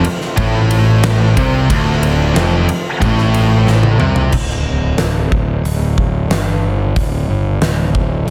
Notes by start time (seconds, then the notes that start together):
Already playing: A3 C4 F4
0.04 ride
0.21 snare
0.37 A1 A2, kick, ride
0.71 ride
1.03 snare, ride
1.37 C2 C3, kick, ride
1.70 D1 D2, kick, ride
2.03 ride
2.34 F1 F2, snare, ride
2.69 ride
3.00 A1 A2, kick, ride
3.18 snare
3.34 ride
3.67 snare
3.83 high tom
3.99 C2 C3, mid tom
4.16 floor tom
4.32 D1, kick, crash
4.49 snare
4.98 D1, snare, open hi-hat
5.32 D1, kick
5.64 D1, open hi-hat
5.98 kick
6.30 G1, snare, open hi-hat
6.96 D1, kick, open hi-hat
7.29 G1
7.61 D1, snare, open hi-hat
7.95 kick
8.27 G1